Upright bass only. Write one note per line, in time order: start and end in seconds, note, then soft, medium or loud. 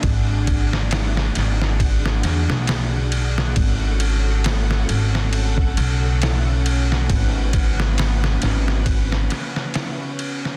0.03 1.32 G#1 loud
1.35 2.20 G#1 medium
2.24 2.46 E2 medium
2.48 3.52 B1 medium
3.57 4.85 G#1 medium
4.89 5.74 G#1 medium
5.78 7.06 B1 loud
7.10 8.38 G#1 loud
8.42 9.27 G#1 medium